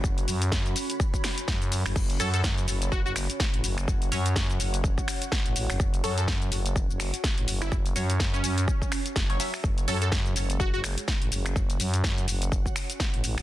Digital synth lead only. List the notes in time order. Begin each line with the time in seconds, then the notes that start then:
2.20 A4
2.34 A4
2.92 F#4
3.06 F#4
6.04 A4
6.18 A4
7.62 E4
8.34 C#4
9.88 A4
10.02 A4
10.60 F#4
10.74 F#4